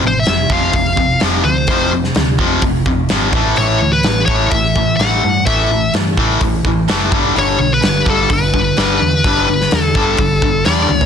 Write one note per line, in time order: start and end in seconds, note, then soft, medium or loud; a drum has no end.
0.04 0.24 A1 medium
0.04 0.25 F2 medium
0.04 0.26 C3 medium
0.04 0.18 C5 medium
0.19 0.52 E5 medium
0.26 0.47 F1 medium
0.26 0.49 F2 medium
0.26 0.50 C3 medium
0.26 snare loud
0.26 open hi-hat soft
0.50 0.71 F1 medium
0.50 0.73 F2 medium
0.50 0.74 C3 medium
0.50 0.74 F3 medium
0.50 0.74 F5 medium
0.50 kick medium
0.73 1.15 F1 medium
0.73 0.96 F2 medium
0.73 0.96 C3 medium
0.73 1.19 F5 medium
0.73 kick loud
0.73 open hi-hat soft
0.97 1.19 F2 medium
0.97 1.19 C3 medium
0.97 kick medium
1.20 1.42 F1 medium
1.20 1.44 F2 medium
1.20 1.44 C3 medium
1.20 1.44 F3 medium
1.20 snare medium
1.20 open hi-hat soft
1.44 1.65 D2 medium
1.44 1.67 F2 medium
1.44 1.68 C3 medium
1.44 1.89 C5 medium
1.67 2.09 F1 medium
1.67 1.91 F2 medium
1.67 1.92 C3 medium
1.67 1.92 F3 medium
1.67 kick medium
1.67 open hi-hat soft
1.92 2.14 F2 medium
1.92 2.14 C3 medium
2.04 snare soft
2.15 2.37 D2 medium
2.15 2.37 F2 medium
2.15 2.38 C3 medium
2.15 snare loud
2.15 open hi-hat soft
2.39 2.60 F1 medium
2.39 2.62 F2 medium
2.39 2.62 C3 medium
2.39 2.62 F3 medium
2.39 kick medium
2.62 2.83 F1 medium
2.62 2.85 F2 medium
2.62 2.85 C3 medium
2.62 kick medium
2.62 open hi-hat soft
2.86 3.07 F1 medium
2.86 3.08 F2 medium
2.86 3.08 C3 medium
2.86 kick medium
3.09 3.31 G#1 medium
3.09 3.33 F2 medium
3.09 3.33 C3 medium
3.09 3.33 F3 medium
3.09 snare medium
3.09 open hi-hat soft
3.33 3.54 A1 medium
3.33 3.56 A2 medium
3.33 3.57 E3 medium
3.33 3.57 A3 medium
3.33 kick medium
3.56 3.78 A1 medium
3.56 3.80 A2 medium
3.56 3.80 E3 medium
3.56 3.80 A3 medium
3.56 3.92 C#5 medium
3.56 open hi-hat soft
3.81 4.02 D2 medium
3.81 4.02 A2 medium
3.81 4.03 E3 medium
3.93 4.25 B4 medium
4.03 4.26 A1 medium
4.03 4.26 A2 medium
4.03 4.27 E3 medium
4.03 snare medium
4.03 open hi-hat soft
4.26 4.49 A1 medium
4.26 4.51 A2 medium
4.26 4.51 E3 medium
4.26 4.51 A3 medium
4.26 4.49 C#5 medium
4.26 kick medium
4.51 4.93 A1 medium
4.51 4.74 A2 medium
4.51 4.74 E3 medium
4.51 4.96 E5 medium
4.51 kick loud
4.51 open hi-hat medium
4.76 4.97 A2 medium
4.76 4.98 E3 medium
4.76 kick medium
4.97 5.20 A1 medium
4.97 5.21 A2 medium
4.97 5.22 E3 medium
4.97 5.22 A3 medium
4.97 5.46 F#5 loud
4.97 open hi-hat soft
5.01 snare medium
5.23 5.44 G2 medium
5.23 5.44 A2 medium
5.23 5.45 E3 medium
5.46 5.88 A1 medium
5.46 5.69 A2 medium
5.46 5.69 E3 medium
5.46 5.69 A3 loud
5.46 5.90 E5 medium
5.46 kick loud
5.46 open hi-hat soft
5.71 5.92 A2 medium
5.71 5.92 E3 medium
5.94 6.14 G2 medium
5.94 6.16 A2 medium
5.94 6.16 E3 medium
5.94 snare loud
5.94 open hi-hat soft
6.17 6.38 A1 medium
6.17 6.40 A2 medium
6.17 6.40 E3 medium
6.17 6.41 A3 medium
6.17 kick medium
6.41 6.62 A1 medium
6.41 6.63 A2 medium
6.41 6.63 E3 medium
6.41 kick loud
6.41 open hi-hat medium
6.65 6.85 A1 medium
6.65 6.87 A2 medium
6.65 6.87 E3 medium
6.65 kick medium
6.88 7.11 A2 medium
6.88 7.11 E3 medium
6.88 7.11 A3 medium
6.88 snare loud
6.88 open hi-hat soft
7.12 7.33 G1 medium
7.12 7.35 G2 medium
7.12 7.35 D3 medium
7.12 7.35 G3 loud
7.12 kick loud
7.36 7.56 G1 medium
7.36 7.58 G2 medium
7.36 7.58 D3 medium
7.36 7.58 G3 medium
7.36 7.70 C#5 loud
7.36 open hi-hat soft
7.59 7.80 B1 medium
7.59 7.81 G2 medium
7.59 7.82 D3 medium
7.74 8.05 B4 medium
7.82 8.04 G1 medium
7.82 8.04 G2 medium
7.82 8.05 D3 medium
7.82 snare medium
7.82 open hi-hat soft
8.06 8.27 G1 medium
8.06 8.29 G2 medium
8.06 8.29 D3 medium
8.06 8.29 G3 loud
8.06 8.32 A4 medium
8.06 kick medium
8.30 8.71 G1 medium
8.30 8.51 G2 medium
8.30 8.52 D3 medium
8.30 9.82 B4 medium
8.30 kick loud
8.30 open hi-hat soft
8.54 8.75 G2 medium
8.54 8.75 D3 medium
8.54 kick medium
8.77 8.98 G1 medium
8.77 9.00 G2 medium
8.77 9.00 D3 medium
8.77 9.00 G3 medium
8.77 snare medium
8.77 open hi-hat soft
9.02 9.22 E2 medium
9.02 9.23 G2 medium
9.02 9.23 D3 medium
9.24 9.66 G1 medium
9.24 9.47 G2 medium
9.24 9.48 D3 medium
9.24 9.48 G3 medium
9.24 kick loud
9.24 open hi-hat soft
9.49 9.70 G2 medium
9.49 9.70 D3 medium
9.61 snare soft
9.71 9.93 E2 medium
9.71 9.93 G2 medium
9.71 9.93 D3 medium
9.71 snare loud
9.71 open hi-hat soft
9.82 10.64 A4 medium
9.95 10.16 G1 medium
9.95 10.18 G2 medium
9.95 10.18 D3 medium
9.95 10.18 G3 medium
9.95 kick medium
10.17 10.39 G1 medium
10.17 10.40 G2 medium
10.17 10.40 D3 medium
10.17 kick loud
10.17 open hi-hat soft
10.42 10.63 G1 medium
10.42 10.64 G2 medium
10.42 10.65 D3 medium
10.42 kick medium
10.65 10.87 E2 medium
10.65 10.89 G2 medium
10.65 10.89 D3 medium
10.65 10.89 G3 medium
10.65 10.99 D5 medium
10.65 snare medium
10.65 open hi-hat soft
10.89 11.06 D2 medium
10.89 11.06 G2 medium
10.89 11.06 D3 medium
10.89 high tom soft
10.99 11.06 C#5 medium
10.99 floor tom medium